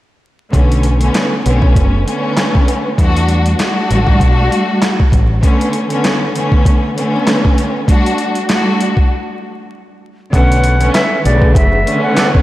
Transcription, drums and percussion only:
0.53 kick, closed hi-hat
0.72 closed hi-hat
0.83 closed hi-hat
1.01 closed hi-hat
1.14 snare, clap, closed hi-hat
1.46 closed hi-hat
1.62 kick
1.75 kick, closed hi-hat
2.08 closed hi-hat
2.37 snare, clap, closed hi-hat
2.55 kick
2.68 closed hi-hat
2.98 kick, closed hi-hat
3.17 closed hi-hat
3.28 closed hi-hat
3.46 closed hi-hat
3.59 snare, clap, closed hi-hat
3.91 closed hi-hat
4.07 kick
4.20 kick, closed hi-hat
4.52 closed hi-hat
4.82 snare, clap, closed hi-hat
5.00 kick
5.12 kick, closed hi-hat
5.43 kick, closed hi-hat
5.61 closed hi-hat
5.73 closed hi-hat
5.90 closed hi-hat
6.04 snare, clap, closed hi-hat
6.36 closed hi-hat
6.52 kick
6.65 kick, closed hi-hat
6.98 closed hi-hat
7.27 snare, clap, closed hi-hat
7.45 kick
7.58 closed hi-hat
7.88 kick, closed hi-hat
8.06 closed hi-hat
8.18 closed hi-hat
8.35 closed hi-hat
8.49 snare, clap, closed hi-hat
8.80 closed hi-hat
8.97 kick
10.33 kick, closed hi-hat
10.52 closed hi-hat
10.64 closed hi-hat
10.81 closed hi-hat
10.94 snare, clap, closed hi-hat
11.26 closed hi-hat
11.42 kick
11.55 kick, closed hi-hat
11.87 closed hi-hat
12.17 snare, clap, closed hi-hat
12.35 kick

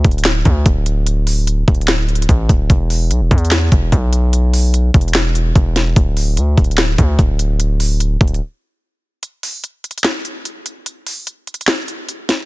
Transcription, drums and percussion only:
0.05 kick, closed hi-hat
0.11 closed hi-hat
0.18 closed hi-hat
0.24 snare, clap, closed hi-hat
0.45 kick, closed hi-hat
0.66 kick, closed hi-hat
0.86 closed hi-hat
1.07 closed hi-hat
1.27 open hi-hat
1.47 closed hi-hat
1.68 kick, closed hi-hat
1.75 closed hi-hat
1.81 closed hi-hat
1.88 snare, clap, closed hi-hat
2.09 closed hi-hat
2.15 closed hi-hat
2.22 closed hi-hat
2.29 kick, closed hi-hat
2.49 kick, closed hi-hat
2.70 kick, closed hi-hat
2.90 open hi-hat
3.11 closed hi-hat
3.31 kick, closed hi-hat
3.38 closed hi-hat
3.45 closed hi-hat
3.51 snare, clap, closed hi-hat
3.72 kick, closed hi-hat
3.92 kick, closed hi-hat
4.13 closed hi-hat
4.33 closed hi-hat
4.54 open hi-hat
4.74 closed hi-hat
4.94 kick, closed hi-hat
5.01 closed hi-hat
5.08 closed hi-hat
5.14 snare, clap, closed hi-hat
5.35 closed hi-hat
5.56 kick, closed hi-hat
5.76 snare, closed hi-hat
5.96 kick, closed hi-hat
6.17 open hi-hat
6.37 closed hi-hat
6.58 kick, closed hi-hat
6.64 closed hi-hat
6.71 closed hi-hat
6.77 snare, clap, closed hi-hat
6.98 kick, closed hi-hat
7.19 kick, closed hi-hat
7.39 closed hi-hat
7.60 closed hi-hat
7.80 open hi-hat
8.00 closed hi-hat
8.21 kick, closed hi-hat
8.28 closed hi-hat
8.34 closed hi-hat
9.23 closed hi-hat
9.43 open hi-hat
9.64 closed hi-hat
9.84 closed hi-hat
9.91 closed hi-hat
9.98 closed hi-hat
10.04 snare, clap, closed hi-hat
10.25 closed hi-hat
10.45 closed hi-hat
10.66 closed hi-hat
10.86 closed hi-hat
11.07 open hi-hat
11.27 closed hi-hat
11.47 closed hi-hat
11.54 closed hi-hat
11.61 closed hi-hat
11.67 snare, clap, closed hi-hat
11.88 closed hi-hat
12.09 closed hi-hat
12.29 snare, closed hi-hat

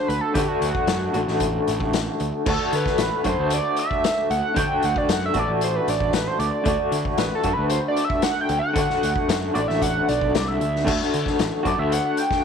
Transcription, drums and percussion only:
0.10 closed hi-hat
0.35 kick, closed hi-hat
0.62 closed hi-hat
0.75 kick
0.87 snare, closed hi-hat
1.14 closed hi-hat
1.28 snare
1.40 kick, closed hi-hat
1.67 closed hi-hat
1.80 kick
1.93 snare, closed hi-hat
2.20 closed hi-hat
2.46 kick, crash
2.72 closed hi-hat
2.86 kick, snare
2.98 snare, closed hi-hat
3.24 kick, closed hi-hat
3.50 closed hi-hat
3.76 closed hi-hat
3.91 kick
4.04 snare, closed hi-hat
4.31 closed hi-hat
4.56 kick, closed hi-hat
4.83 closed hi-hat
4.96 kick
5.09 snare, closed hi-hat
5.34 kick, closed hi-hat
5.61 closed hi-hat
5.88 closed hi-hat
6.00 kick
6.13 snare, closed hi-hat
6.40 closed hi-hat
6.65 kick, closed hi-hat
6.92 closed hi-hat
7.05 kick
7.18 snare, closed hi-hat
7.43 kick, closed hi-hat
7.70 closed hi-hat
7.96 closed hi-hat
8.10 kick
8.22 snare, closed hi-hat
8.49 closed hi-hat
8.76 kick, closed hi-hat
8.90 snare
9.03 closed hi-hat
9.16 kick
9.29 snare, closed hi-hat
9.55 closed hi-hat
9.70 snare
9.82 kick, closed hi-hat
10.09 closed hi-hat
10.21 kick
10.35 snare, closed hi-hat
10.61 closed hi-hat
10.76 snare
10.87 kick, crash
11.01 snare
11.13 closed hi-hat
11.26 kick, snare
11.39 snare, closed hi-hat
11.65 kick, closed hi-hat
11.92 closed hi-hat
12.17 closed hi-hat
12.31 kick, snare

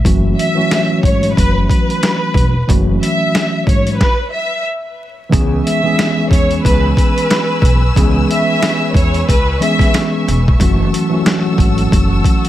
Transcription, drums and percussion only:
0.05 kick, closed hi-hat
0.39 closed hi-hat
0.71 snare, closed hi-hat
1.03 kick, closed hi-hat
1.23 closed hi-hat
1.37 kick, closed hi-hat
1.70 kick, closed hi-hat
1.90 closed hi-hat
2.03 snare, closed hi-hat
2.34 kick, closed hi-hat
2.69 kick, closed hi-hat
3.03 closed hi-hat
3.35 snare, closed hi-hat
3.67 kick, closed hi-hat
3.87 closed hi-hat
4.01 kick, snare
5.33 kick, closed hi-hat
5.67 closed hi-hat
5.99 snare, closed hi-hat
6.31 kick, closed hi-hat
6.51 closed hi-hat
6.65 kick, closed hi-hat
6.97 kick, closed hi-hat
7.18 closed hi-hat
7.30 snare, closed hi-hat
7.62 kick, closed hi-hat
7.96 kick, closed hi-hat
8.31 closed hi-hat
8.63 snare, closed hi-hat
8.94 kick, closed hi-hat
9.14 closed hi-hat
9.29 kick, closed hi-hat
9.62 closed hi-hat
9.79 kick, snare, closed hi-hat
9.94 snare, closed hi-hat
10.29 closed hi-hat
10.48 kick
10.60 kick, closed hi-hat
10.94 closed hi-hat
11.26 snare, closed hi-hat
11.58 kick, closed hi-hat
11.78 closed hi-hat
11.92 kick, closed hi-hat
12.24 kick, closed hi-hat
12.45 closed hi-hat

